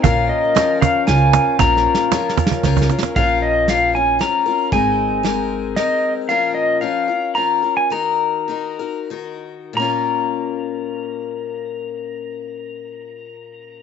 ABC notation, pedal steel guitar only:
X:1
M:3/4
L:1/16
Q:1/4=115
K:Bbm
V:1 name="Pedal steel guitar"
f2 e4 f2 a4 | b8 z4 | f2 e2 f2 a2 b4 | a8 e3 z |
f2 e2 f4 b3 a | b8 z4 | b12- | b12 |]